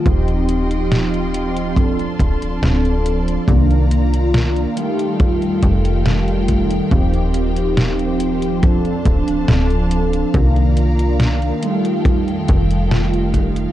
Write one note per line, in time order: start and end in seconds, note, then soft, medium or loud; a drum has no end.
0.04 1.78 D#1 loud
0.04 1.68 F3 medium
0.04 1.68 C4 medium
0.04 1.69 D#4 medium
0.04 3.45 F4 medium
0.04 1.70 G4 medium
0.04 1.75 D#5 medium
0.04 1.75 G5 medium
0.04 3.45 C6 medium
0.04 kick loud
0.04 closed hi-hat medium
0.28 closed hi-hat soft
0.49 closed hi-hat medium
0.71 closed hi-hat medium
0.92 snare loud
0.92 closed hi-hat medium
1.14 closed hi-hat soft
1.34 closed hi-hat medium
1.57 closed hi-hat medium
1.75 2.07 D1 medium
1.75 3.39 F3 medium
1.75 3.40 C4 medium
1.75 3.40 D4 medium
1.75 3.41 A4 medium
1.75 4.74 D5 medium
1.75 3.47 A5 medium
1.75 kick loud
1.75 closed hi-hat medium
1.99 closed hi-hat soft
2.19 2.35 D1 medium
2.19 kick medium
2.19 closed hi-hat medium
2.42 2.58 D1 soft
2.42 closed hi-hat medium
2.63 3.38 D1 loud
2.63 snare loud
2.63 closed hi-hat medium
2.85 closed hi-hat soft
3.06 closed hi-hat loud
3.28 closed hi-hat medium
3.47 4.66 C2 loud
3.47 4.68 D#3 medium
3.47 8.59 D#3 medium
3.47 4.69 A#3 medium
3.47 4.69 D4 medium
3.47 4.69 F4 medium
3.47 8.59 F5 medium
3.47 4.76 A#5 medium
3.47 kick loud
3.47 closed hi-hat medium
3.71 closed hi-hat soft
3.91 closed hi-hat medium
4.14 closed hi-hat medium
4.34 snare loud
4.34 closed hi-hat medium
4.56 closed hi-hat soft
4.75 6.82 D#3 medium
4.75 6.83 G3 medium
4.75 6.83 A3 medium
4.75 6.84 F4 loud
4.75 6.89 A4 medium
4.75 8.59 G5 medium
4.75 closed hi-hat loud
4.99 closed hi-hat medium
5.20 kick loud
5.20 closed hi-hat medium
5.42 closed hi-hat soft
5.63 6.81 F1 loud
5.63 kick loud
5.63 closed hi-hat loud
5.85 closed hi-hat medium
6.06 snare loud
6.06 closed hi-hat medium
6.28 closed hi-hat soft
6.48 kick medium
6.48 closed hi-hat loud
6.71 closed hi-hat medium
6.90 8.65 D#1 loud
6.90 8.54 F3 medium
6.90 8.54 C4 medium
6.90 8.55 D#4 medium
6.90 8.55 G4 medium
6.90 10.31 C5 medium
6.90 kick loud
6.90 closed hi-hat medium
7.14 closed hi-hat soft
7.34 closed hi-hat medium
7.56 closed hi-hat medium
7.77 snare loud
7.77 closed hi-hat medium
7.99 closed hi-hat soft
8.20 closed hi-hat medium
8.42 closed hi-hat medium
8.61 8.93 D1 medium
8.61 10.25 F3 medium
8.61 10.26 C4 medium
8.61 10.32 D4 medium
8.61 10.26 D4 medium
8.61 10.27 A4 medium
8.61 13.72 F5 medium
8.61 10.32 A5 medium
8.61 kick loud
8.61 closed hi-hat medium
8.85 closed hi-hat soft
9.05 9.21 D1 medium
9.05 kick loud
9.05 closed hi-hat medium
9.28 9.44 D1 soft
9.28 closed hi-hat medium
9.48 10.24 D1 loud
9.48 snare loud
9.48 closed hi-hat medium
9.70 closed hi-hat soft
9.91 closed hi-hat loud
10.13 closed hi-hat medium
10.33 11.53 C2 loud
10.33 11.54 D#3 medium
10.33 13.72 D#3 medium
10.33 11.54 A#3 medium
10.33 11.55 D4 medium
10.33 11.55 F4 medium
10.33 11.61 D5 medium
10.33 11.61 A#5 medium
10.33 kick loud
10.33 closed hi-hat medium
10.56 closed hi-hat soft
10.77 closed hi-hat medium
10.99 closed hi-hat medium
11.20 snare loud
11.20 closed hi-hat medium
11.42 closed hi-hat soft
11.61 13.68 D#3 medium
11.61 13.68 G3 medium
11.61 13.69 A3 medium
11.61 13.70 F4 loud
11.61 13.72 A4 medium
11.61 13.72 G5 medium
11.61 closed hi-hat medium
11.85 closed hi-hat medium
12.05 kick loud
12.05 closed hi-hat medium
12.28 closed hi-hat soft
12.48 13.67 F1 loud
12.48 kick loud
12.48 closed hi-hat medium
12.71 closed hi-hat soft
12.91 snare loud
12.91 closed hi-hat medium
13.14 closed hi-hat soft
13.34 kick medium
13.34 closed hi-hat medium
13.56 closed hi-hat medium